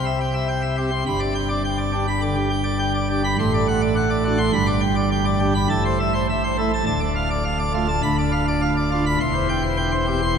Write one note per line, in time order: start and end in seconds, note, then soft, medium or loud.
0.00 1.04 C2 medium
0.00 1.04 C3 medium
0.06 0.18 E5 medium
0.21 0.33 G5 medium
0.34 0.47 E5 medium
0.48 0.61 G5 medium
0.62 0.75 E5 medium
0.77 0.90 C4 medium
0.77 0.90 G4 medium
0.91 1.04 C6 medium
1.07 3.34 G1 medium
1.07 3.34 G2 medium
1.07 1.20 B5 loud
1.20 1.33 D5 medium
1.35 1.48 G5 medium
1.49 1.62 D5 medium
1.64 1.77 G5 medium
1.78 1.91 D5 medium
1.92 2.06 D4 medium
1.92 2.06 G4 medium
2.08 2.21 B5 medium
2.21 2.35 D3 medium
2.21 2.35 D5 medium
2.35 2.49 G4 medium
2.50 2.63 G5 medium
2.64 2.78 D5 medium
2.79 2.92 G5 medium
2.95 3.08 D5 medium
3.09 3.22 D4 medium
3.09 3.22 G4 medium
3.24 3.36 B5 medium
3.39 4.51 A1 medium
3.39 4.51 A2 medium
3.39 3.52 C6 loud
3.54 3.67 D5 medium
3.68 3.81 F#5 medium
3.81 3.95 D5 medium
3.96 4.09 F#5 medium
4.10 4.23 D5 medium
4.25 4.38 D4 medium
4.25 4.38 F#4 medium
4.38 4.51 C6 medium
4.53 5.66 G1 medium
4.53 5.66 G2 medium
4.53 4.66 B5 loud
4.67 4.81 D5 medium
4.81 4.95 G5 medium
4.96 5.10 D5 medium
5.11 5.25 G5 medium
5.25 5.39 D5 medium
5.40 5.53 D4 medium
5.40 5.53 G4 medium
5.55 5.68 B5 medium
5.69 6.83 A1 medium
5.69 6.82 A2 medium
5.69 5.83 A5 loud
5.85 5.98 C5 medium
6.00 6.12 E5 medium
6.13 6.27 C5 medium
6.29 6.42 E5 medium
6.44 6.56 C5 medium
6.58 6.71 A3 medium
6.58 6.71 E4 medium
6.74 6.84 A5 medium
6.86 8.00 D1 loud
6.86 8.00 D2 loud
6.86 6.99 A5 loud
7.00 7.14 D5 medium
7.16 7.29 F5 medium
7.30 7.43 D5 medium
7.45 7.58 F5 medium
7.59 7.72 D5 medium
7.73 7.87 A3 medium
7.73 7.87 F4 medium
7.88 8.01 A5 medium
8.03 9.17 D1 loud
8.03 9.17 D2 loud
8.03 8.16 B5 loud
8.19 8.31 D5 medium
8.32 8.45 F5 medium
8.48 8.61 D5 medium
8.62 8.75 F5 medium
8.77 8.90 D5 medium
8.91 9.04 D4 medium
8.91 9.04 F4 medium
9.06 9.19 B5 medium
9.20 10.34 E1 loud
9.20 10.34 E2 loud
9.20 9.34 C6 loud
9.34 9.48 C5 medium
9.49 9.62 G5 medium
9.63 9.77 C5 medium
9.77 9.91 G5 medium
9.91 10.06 C5 medium
10.06 10.20 C4 medium
10.06 10.20 G4 medium
10.22 10.35 C6 medium